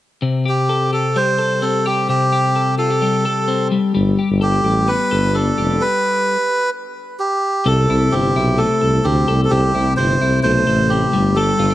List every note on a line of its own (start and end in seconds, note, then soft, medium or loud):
0.22 2.08 C3 medium
0.46 0.92 G4 soft
0.46 0.91 G4 medium
0.69 1.38 A4 medium
0.93 1.85 G4 soft
0.93 1.17 A4 medium
1.16 3.02 G3 medium
1.16 1.65 C5 medium
1.39 2.55 A4 medium
1.62 3.47 C4 soft
1.62 1.86 A4 medium
1.86 2.32 G4 medium
1.86 2.08 G4 medium
2.09 3.77 C3 medium
2.09 2.75 G4 medium
2.32 2.78 G4 medium
2.56 3.25 A4 medium
2.78 2.90 F4 soft
2.78 3.68 A4 medium
2.90 3.77 G4 soft
3.02 3.72 G3 medium
3.25 3.98 A4 medium
3.48 3.76 C4 soft
3.72 3.94 G3 medium
3.95 4.15 G1 medium
3.95 6.36 G3 medium
4.19 4.64 G4 medium
4.31 4.60 G1 medium
4.41 4.90 G4 medium
4.41 5.11 A4 medium
4.64 4.94 A1 medium
4.64 5.58 G4 soft
4.88 5.86 B3 medium
4.88 5.36 B4 loud
5.11 5.51 G1 medium
5.11 6.36 A4 medium
5.34 5.86 D4 medium
5.34 5.82 A4 medium
5.58 5.78 F1 medium
5.58 6.36 G4 medium
5.81 6.70 B4 loud
7.19 7.68 G4 medium
7.66 7.86 C2 medium
7.66 9.50 C3 medium
7.66 8.81 A4 medium
7.66 8.14 A4 medium
7.90 8.09 C2 medium
7.90 8.35 E4 medium
8.12 8.33 G1 medium
8.12 9.04 C4 medium
8.12 8.60 G4 medium
8.36 8.65 B1 medium
8.36 9.74 E4 medium
8.58 10.44 A3 medium
8.58 9.06 A4 medium
8.82 9.02 C2 medium
8.82 9.28 A4 medium
9.04 9.25 D2 medium
9.04 9.97 C4 soft
9.04 9.41 G4 medium
9.28 9.48 C2 medium
9.28 9.52 A4 medium
9.44 9.51 A4 medium
9.50 9.71 C2 loud
9.50 11.17 C3 medium
9.50 9.94 G4 medium
9.50 10.67 A4 medium
9.75 9.94 C2 medium
9.75 10.20 E4 medium
9.97 10.17 G1 medium
9.97 10.89 C4 medium
9.97 10.40 C5 medium
10.21 10.40 C2 medium
10.21 11.18 E4 medium
10.43 10.63 B1 medium
10.43 11.40 A3 medium
10.43 10.91 C5 loud
10.67 11.06 A1 medium
10.67 11.37 A4 medium
10.89 11.18 C4 soft
10.89 11.37 G4 medium
11.13 11.52 G1 medium
11.13 11.36 G3 medium
11.36 11.74 G3 medium
11.36 11.74 A4 medium
11.59 11.74 G1 medium
11.59 11.70 F4 medium
11.70 11.74 G4 soft